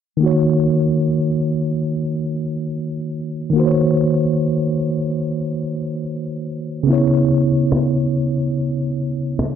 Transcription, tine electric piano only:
0.17 D#3 A#3
0.23 F#4 C#5
3.50 D#3 A#3
3.56 F#4 C5
3.66 C#5
6.83 C#3 B3
6.90 E4 C#5

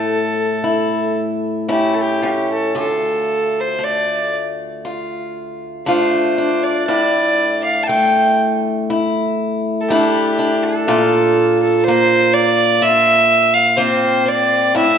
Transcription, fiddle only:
Already playing: A4
1.72 G4
1.94 A4
2.01 G4
2.22 F4 G4
2.52 A4
2.80 A4
3.60 C5
3.84 D5
5.87 C5
6.63 D5
6.87 D5
7.64 F5
7.83 A5
7.87 G5
9.81 A4
9.89 G4
10.63 A4
11.63 A4
11.84 C5
12.34 D5
12.82 E5
13.54 F5
13.77 C5
14.28 D5
14.77 E5

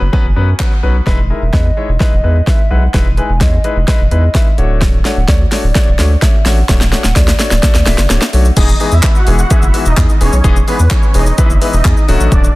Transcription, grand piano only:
Already playing: B5
0.13 F#3 B3 C#4 B4 G#5
0.36 F#3 B3 C#4 B4
0.59 F#3 B3 C#4 B4 F#5
0.83 F#3 B3 C#4 B4
1.06 G#3 D#4 E4 B4
1.30 G#3 D#4 E4 A#4
1.53 G#3 D#4 E4 B4
1.77 G#3 D#4 E4 C#5
2.00 G#3 D#4 E4 B4
2.23 G#3 D#4 E4 B4
2.47 G#3 D#4 E4 B4
2.70 G#3 D#4 E4 B4
2.94 G#3 D#4 E4 B4
3.17 G#3 D#4 E4 B4
3.41 G#3 D#4 E4 C#5
3.64 G#3 D#4 E4 B4
3.87 G#3 D#4 E4 B4
4.11 G#3 D#4 E4 B4
4.34 G#3 D#4 E4 B4
4.58 A3 D4 F#4 C#5
5.05 A3 D4 F#4 C#5
5.28 A3 D4 F#4 C#5
5.52 A3 D4 F#4 C#5
5.75 A3 D4 F#4 C#5
5.99 A3 D4 F#4 C#5
6.22 A3 D4 F#4 C#5
6.45 A3 D4 F#4 C#5
6.69 A3 D4 F#4 C#5
6.92 A3 D4 F#4 C#5
7.16 A3 D4 F#4 C#5
7.39 A3 D4 F#4 C#5
7.62 A3 D4 F#4 A4
7.86 A3 D4 F#4 E5
8.09 A3 D4 F#4 C#5
8.33 A3 D4 F#4 C#5
8.56 E3 G#3 B3 D#4 G#4
8.80 E3 G#3 B3 D#4 G#4
9.04 E3 G#3 B3 D#4 B4
9.27 E3 G#3 B3 D#4 G#4
9.50 E3 G#3 B3 D#4 G#4
9.74 E3 G#3 B3 D#4 F#4
9.97 E3 G#3 B3 D#4 G#4
10.20 E3 G#3 B3 D#4 G#4
10.44 E3 G#3 B3 D#4 G#4
10.67 E3 G#3 B3 D#4 G#4
10.91 E3 G#3 B3 D#4 G#4
11.14 E3 G#3 B3 D#4 G#4
11.38 E3 G#3 B3 D#4 B4
11.61 E3 G#3 B3 D#4 B4
11.85 E3 G#3 B3 D#4 G#4
12.08 D3 F#3 A3 C#4 F#4

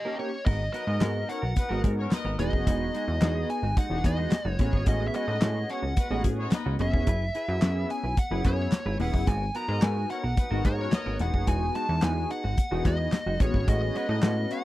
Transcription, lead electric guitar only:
Already playing: G4 D#5
0.19 C#5
0.46 D#5
0.73 D#5
1.29 F#5
2.40 D#5
3.50 G#5
3.78 F#5
4.06 D#5
4.50 C#5
4.61 C#5
4.88 D#5
5.07 E5
5.16 D#5
5.70 F#5
6.81 E5
7.91 G#5
8.19 F#5
8.46 C#5
9.01 F#5
9.28 G#5
9.56 A#5
9.83 G#5
10.10 F#5
10.66 C#5
11.21 F#5
11.48 G#5
11.76 A5
12.04 G#5
12.31 F#5
12.86 D#5
13.41 C#5
13.69 D#5
13.97 D#5
14.52 F#5

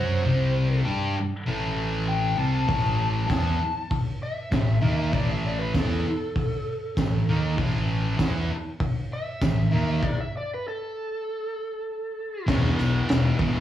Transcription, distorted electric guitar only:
Already playing: F#3 C#4 F#4
0.23 C3 G3 C4
0.84 G3 D4 G4
1.46 A2 E3 A3
2.37 C3 G3 C4
2.67 A2 E3 A3
3.27 E3 B3 E4
4.52 A2 E3
4.82 D#3 A#3 D#4
5.13 A2 E3 A3
5.75 E3 B3 E4
6.98 A2 E3
7.29 D#3 A#3 D#4
7.57 A2 E3 A3
8.18 E3 B3 E4
9.42 A2 E3
9.71 D#3 A#3 D#4
12.47 E2 B2
12.51 E3
13.39 B2 E3
13.43 E2

